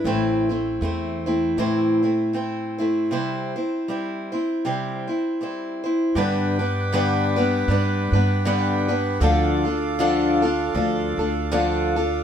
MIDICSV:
0, 0, Header, 1, 4, 480
1, 0, Start_track
1, 0, Tempo, 764331
1, 28, Time_signature, 4, 2, 24, 8
1, 7684, End_track
2, 0, Start_track
2, 0, Title_t, "Accordion"
2, 0, Program_c, 0, 21
2, 3863, Note_on_c, 0, 71, 73
2, 3866, Note_on_c, 0, 86, 77
2, 3868, Note_on_c, 0, 79, 66
2, 5765, Note_off_c, 0, 71, 0
2, 5768, Note_off_c, 0, 79, 0
2, 5778, Note_on_c, 0, 69, 68
2, 5785, Note_on_c, 0, 77, 73
2, 7682, Note_off_c, 0, 86, 0
2, 7684, Note_off_c, 0, 69, 0
2, 7684, Note_off_c, 0, 77, 0
2, 7684, End_track
3, 0, Start_track
3, 0, Title_t, "Steel-string acoustic guitar"
3, 0, Program_c, 1, 25
3, 33, Note_on_c, 1, 45, 63
3, 33, Note_on_c, 1, 52, 63
3, 41, Note_on_c, 1, 57, 70
3, 41, Note_on_c, 1, 60, 72
3, 42, Note_on_c, 1, 64, 70
3, 45, Note_on_c, 1, 72, 69
3, 302, Note_off_c, 1, 72, 0
3, 304, Note_off_c, 1, 45, 0
3, 304, Note_off_c, 1, 52, 0
3, 308, Note_off_c, 1, 57, 0
3, 308, Note_off_c, 1, 60, 0
3, 309, Note_off_c, 1, 64, 0
3, 309, Note_on_c, 1, 72, 40
3, 316, Note_on_c, 1, 64, 38
3, 319, Note_on_c, 1, 60, 41
3, 323, Note_on_c, 1, 57, 38
3, 507, Note_off_c, 1, 57, 0
3, 512, Note_off_c, 1, 72, 0
3, 515, Note_on_c, 1, 57, 55
3, 516, Note_off_c, 1, 64, 0
3, 517, Note_off_c, 1, 60, 0
3, 523, Note_on_c, 1, 64, 58
3, 524, Note_on_c, 1, 60, 54
3, 532, Note_on_c, 1, 72, 64
3, 784, Note_off_c, 1, 72, 0
3, 785, Note_off_c, 1, 57, 0
3, 789, Note_off_c, 1, 64, 0
3, 790, Note_off_c, 1, 60, 0
3, 792, Note_on_c, 1, 72, 50
3, 797, Note_on_c, 1, 64, 50
3, 800, Note_on_c, 1, 60, 44
3, 804, Note_on_c, 1, 57, 45
3, 989, Note_off_c, 1, 60, 0
3, 991, Note_on_c, 1, 45, 69
3, 993, Note_off_c, 1, 57, 0
3, 994, Note_off_c, 1, 72, 0
3, 994, Note_on_c, 1, 52, 68
3, 996, Note_off_c, 1, 64, 0
3, 996, Note_on_c, 1, 60, 66
3, 1000, Note_on_c, 1, 57, 68
3, 1003, Note_on_c, 1, 64, 70
3, 1003, Note_on_c, 1, 72, 74
3, 1264, Note_off_c, 1, 45, 0
3, 1265, Note_off_c, 1, 52, 0
3, 1265, Note_off_c, 1, 72, 0
3, 1266, Note_off_c, 1, 60, 0
3, 1268, Note_off_c, 1, 57, 0
3, 1269, Note_off_c, 1, 64, 0
3, 1272, Note_on_c, 1, 72, 42
3, 1278, Note_on_c, 1, 64, 40
3, 1282, Note_on_c, 1, 60, 35
3, 1287, Note_on_c, 1, 57, 31
3, 1458, Note_off_c, 1, 57, 0
3, 1464, Note_off_c, 1, 60, 0
3, 1466, Note_on_c, 1, 57, 51
3, 1472, Note_off_c, 1, 64, 0
3, 1472, Note_on_c, 1, 60, 53
3, 1474, Note_off_c, 1, 72, 0
3, 1479, Note_on_c, 1, 64, 46
3, 1484, Note_on_c, 1, 72, 56
3, 1741, Note_off_c, 1, 57, 0
3, 1741, Note_off_c, 1, 72, 0
3, 1744, Note_off_c, 1, 60, 0
3, 1748, Note_off_c, 1, 64, 0
3, 1749, Note_on_c, 1, 72, 48
3, 1755, Note_on_c, 1, 64, 45
3, 1758, Note_on_c, 1, 60, 40
3, 1766, Note_on_c, 1, 57, 37
3, 1952, Note_off_c, 1, 72, 0
3, 1953, Note_off_c, 1, 60, 0
3, 1953, Note_on_c, 1, 48, 70
3, 1956, Note_off_c, 1, 64, 0
3, 1957, Note_off_c, 1, 57, 0
3, 1960, Note_on_c, 1, 55, 62
3, 1961, Note_on_c, 1, 60, 66
3, 1963, Note_on_c, 1, 64, 70
3, 1966, Note_on_c, 1, 72, 71
3, 2225, Note_off_c, 1, 48, 0
3, 2227, Note_off_c, 1, 72, 0
3, 2228, Note_off_c, 1, 55, 0
3, 2228, Note_off_c, 1, 60, 0
3, 2229, Note_off_c, 1, 64, 0
3, 2234, Note_on_c, 1, 72, 47
3, 2239, Note_on_c, 1, 64, 35
3, 2247, Note_on_c, 1, 60, 33
3, 2435, Note_off_c, 1, 72, 0
3, 2437, Note_off_c, 1, 60, 0
3, 2437, Note_off_c, 1, 64, 0
3, 2438, Note_on_c, 1, 55, 53
3, 2445, Note_on_c, 1, 60, 45
3, 2449, Note_on_c, 1, 64, 57
3, 2455, Note_on_c, 1, 72, 62
3, 2705, Note_off_c, 1, 72, 0
3, 2707, Note_off_c, 1, 55, 0
3, 2710, Note_off_c, 1, 60, 0
3, 2711, Note_off_c, 1, 64, 0
3, 2712, Note_on_c, 1, 72, 51
3, 2718, Note_on_c, 1, 64, 45
3, 2728, Note_on_c, 1, 60, 39
3, 2914, Note_off_c, 1, 72, 0
3, 2917, Note_off_c, 1, 64, 0
3, 2919, Note_on_c, 1, 48, 60
3, 2921, Note_off_c, 1, 60, 0
3, 2922, Note_on_c, 1, 55, 59
3, 2926, Note_on_c, 1, 64, 68
3, 2928, Note_on_c, 1, 60, 58
3, 2930, Note_on_c, 1, 72, 60
3, 3179, Note_off_c, 1, 72, 0
3, 3187, Note_off_c, 1, 48, 0
3, 3187, Note_on_c, 1, 72, 42
3, 3188, Note_off_c, 1, 64, 0
3, 3189, Note_off_c, 1, 55, 0
3, 3192, Note_off_c, 1, 60, 0
3, 3195, Note_on_c, 1, 64, 37
3, 3205, Note_on_c, 1, 60, 29
3, 3391, Note_off_c, 1, 72, 0
3, 3394, Note_off_c, 1, 60, 0
3, 3395, Note_off_c, 1, 64, 0
3, 3396, Note_on_c, 1, 55, 48
3, 3402, Note_on_c, 1, 60, 46
3, 3408, Note_on_c, 1, 64, 58
3, 3411, Note_on_c, 1, 72, 51
3, 3658, Note_off_c, 1, 72, 0
3, 3665, Note_on_c, 1, 72, 44
3, 3666, Note_off_c, 1, 55, 0
3, 3668, Note_off_c, 1, 60, 0
3, 3670, Note_off_c, 1, 64, 0
3, 3677, Note_on_c, 1, 64, 43
3, 3680, Note_on_c, 1, 60, 38
3, 3868, Note_on_c, 1, 43, 72
3, 3870, Note_off_c, 1, 72, 0
3, 3872, Note_on_c, 1, 50, 79
3, 3873, Note_off_c, 1, 60, 0
3, 3874, Note_on_c, 1, 55, 82
3, 3875, Note_on_c, 1, 59, 79
3, 3876, Note_off_c, 1, 64, 0
3, 3881, Note_on_c, 1, 62, 85
3, 3882, Note_on_c, 1, 71, 81
3, 4131, Note_off_c, 1, 71, 0
3, 4134, Note_off_c, 1, 62, 0
3, 4138, Note_on_c, 1, 71, 51
3, 4141, Note_off_c, 1, 59, 0
3, 4142, Note_off_c, 1, 43, 0
3, 4142, Note_on_c, 1, 62, 51
3, 4143, Note_off_c, 1, 50, 0
3, 4144, Note_off_c, 1, 55, 0
3, 4148, Note_on_c, 1, 59, 46
3, 4155, Note_on_c, 1, 55, 47
3, 4346, Note_off_c, 1, 71, 0
3, 4347, Note_off_c, 1, 55, 0
3, 4348, Note_off_c, 1, 59, 0
3, 4348, Note_off_c, 1, 62, 0
3, 4349, Note_on_c, 1, 43, 71
3, 4349, Note_on_c, 1, 50, 73
3, 4355, Note_on_c, 1, 55, 83
3, 4355, Note_on_c, 1, 59, 84
3, 4357, Note_on_c, 1, 62, 90
3, 4362, Note_on_c, 1, 71, 94
3, 4616, Note_off_c, 1, 71, 0
3, 4618, Note_off_c, 1, 62, 0
3, 4622, Note_off_c, 1, 43, 0
3, 4622, Note_off_c, 1, 50, 0
3, 4624, Note_on_c, 1, 71, 62
3, 4625, Note_off_c, 1, 55, 0
3, 4625, Note_off_c, 1, 59, 0
3, 4626, Note_on_c, 1, 62, 60
3, 4634, Note_on_c, 1, 59, 55
3, 4641, Note_on_c, 1, 55, 50
3, 4818, Note_off_c, 1, 55, 0
3, 4826, Note_on_c, 1, 55, 62
3, 4828, Note_off_c, 1, 59, 0
3, 4829, Note_off_c, 1, 71, 0
3, 4830, Note_off_c, 1, 62, 0
3, 4835, Note_on_c, 1, 59, 58
3, 4839, Note_on_c, 1, 62, 60
3, 4844, Note_on_c, 1, 71, 77
3, 5099, Note_off_c, 1, 71, 0
3, 5100, Note_off_c, 1, 55, 0
3, 5105, Note_off_c, 1, 59, 0
3, 5107, Note_off_c, 1, 62, 0
3, 5107, Note_on_c, 1, 71, 60
3, 5113, Note_on_c, 1, 62, 43
3, 5122, Note_on_c, 1, 59, 45
3, 5124, Note_on_c, 1, 55, 41
3, 5307, Note_off_c, 1, 55, 0
3, 5309, Note_off_c, 1, 71, 0
3, 5309, Note_on_c, 1, 43, 70
3, 5309, Note_on_c, 1, 50, 85
3, 5311, Note_off_c, 1, 59, 0
3, 5312, Note_off_c, 1, 62, 0
3, 5315, Note_on_c, 1, 55, 76
3, 5316, Note_on_c, 1, 71, 89
3, 5318, Note_on_c, 1, 59, 91
3, 5319, Note_on_c, 1, 62, 94
3, 5572, Note_off_c, 1, 71, 0
3, 5576, Note_off_c, 1, 62, 0
3, 5579, Note_on_c, 1, 71, 59
3, 5581, Note_off_c, 1, 50, 0
3, 5582, Note_off_c, 1, 43, 0
3, 5582, Note_off_c, 1, 59, 0
3, 5584, Note_off_c, 1, 55, 0
3, 5584, Note_on_c, 1, 62, 61
3, 5590, Note_on_c, 1, 59, 53
3, 5598, Note_on_c, 1, 55, 46
3, 5783, Note_off_c, 1, 62, 0
3, 5784, Note_on_c, 1, 50, 88
3, 5785, Note_off_c, 1, 55, 0
3, 5787, Note_off_c, 1, 71, 0
3, 5787, Note_on_c, 1, 53, 80
3, 5788, Note_off_c, 1, 59, 0
3, 5790, Note_on_c, 1, 62, 86
3, 5798, Note_on_c, 1, 69, 89
3, 5799, Note_on_c, 1, 65, 83
3, 6052, Note_off_c, 1, 69, 0
3, 6059, Note_off_c, 1, 50, 0
3, 6060, Note_off_c, 1, 65, 0
3, 6060, Note_on_c, 1, 69, 51
3, 6061, Note_off_c, 1, 53, 0
3, 6062, Note_off_c, 1, 62, 0
3, 6068, Note_on_c, 1, 65, 43
3, 6076, Note_on_c, 1, 62, 42
3, 6267, Note_off_c, 1, 69, 0
3, 6271, Note_off_c, 1, 65, 0
3, 6273, Note_on_c, 1, 50, 87
3, 6275, Note_off_c, 1, 62, 0
3, 6278, Note_on_c, 1, 53, 79
3, 6280, Note_on_c, 1, 65, 81
3, 6281, Note_on_c, 1, 62, 87
3, 6285, Note_on_c, 1, 69, 98
3, 6537, Note_off_c, 1, 69, 0
3, 6543, Note_off_c, 1, 50, 0
3, 6545, Note_off_c, 1, 65, 0
3, 6545, Note_on_c, 1, 69, 58
3, 6546, Note_off_c, 1, 53, 0
3, 6548, Note_off_c, 1, 62, 0
3, 6552, Note_on_c, 1, 65, 60
3, 6563, Note_on_c, 1, 62, 55
3, 6746, Note_off_c, 1, 62, 0
3, 6748, Note_off_c, 1, 65, 0
3, 6749, Note_off_c, 1, 69, 0
3, 6749, Note_on_c, 1, 53, 56
3, 6754, Note_on_c, 1, 62, 60
3, 6756, Note_on_c, 1, 65, 60
3, 6764, Note_on_c, 1, 69, 68
3, 7020, Note_off_c, 1, 69, 0
3, 7022, Note_off_c, 1, 53, 0
3, 7024, Note_off_c, 1, 62, 0
3, 7025, Note_off_c, 1, 65, 0
3, 7027, Note_on_c, 1, 69, 52
3, 7034, Note_on_c, 1, 65, 41
3, 7037, Note_on_c, 1, 62, 40
3, 7229, Note_off_c, 1, 62, 0
3, 7231, Note_off_c, 1, 69, 0
3, 7232, Note_off_c, 1, 65, 0
3, 7232, Note_on_c, 1, 53, 83
3, 7234, Note_on_c, 1, 50, 76
3, 7237, Note_on_c, 1, 62, 86
3, 7239, Note_on_c, 1, 65, 91
3, 7239, Note_on_c, 1, 69, 90
3, 7504, Note_off_c, 1, 53, 0
3, 7505, Note_off_c, 1, 50, 0
3, 7505, Note_off_c, 1, 69, 0
3, 7506, Note_off_c, 1, 62, 0
3, 7507, Note_off_c, 1, 65, 0
3, 7512, Note_on_c, 1, 69, 56
3, 7520, Note_on_c, 1, 65, 56
3, 7528, Note_on_c, 1, 62, 50
3, 7684, Note_off_c, 1, 62, 0
3, 7684, Note_off_c, 1, 65, 0
3, 7684, Note_off_c, 1, 69, 0
3, 7684, End_track
4, 0, Start_track
4, 0, Title_t, "Upright bass"
4, 0, Program_c, 2, 32
4, 26, Note_on_c, 2, 33, 80
4, 484, Note_off_c, 2, 33, 0
4, 509, Note_on_c, 2, 40, 85
4, 965, Note_off_c, 2, 40, 0
4, 987, Note_on_c, 2, 45, 72
4, 1923, Note_off_c, 2, 45, 0
4, 3864, Note_on_c, 2, 43, 94
4, 4800, Note_off_c, 2, 43, 0
4, 4823, Note_on_c, 2, 43, 91
4, 5085, Note_off_c, 2, 43, 0
4, 5099, Note_on_c, 2, 43, 76
4, 5761, Note_off_c, 2, 43, 0
4, 5780, Note_on_c, 2, 38, 88
4, 6719, Note_off_c, 2, 38, 0
4, 6748, Note_on_c, 2, 38, 92
4, 7008, Note_off_c, 2, 38, 0
4, 7018, Note_on_c, 2, 38, 82
4, 7682, Note_off_c, 2, 38, 0
4, 7684, End_track
0, 0, End_of_file